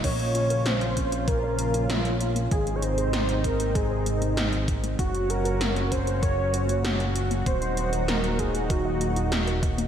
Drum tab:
CC |x---------------|----------------|----------------|----------------|
HH |xxxxxxxxx-xxxxxx|xxxxxxxxx-xxxxxx|xxxxxxxxx-xxxxxx|xxxxxxxxx-xxxxxx|
SD |----o-------o---|----o-------o---|----o-------o---|----o-------o---|
BD |o-----o-o-------|o-----o-o-----o-|o-----o-o-------|o-----o-o-----o-|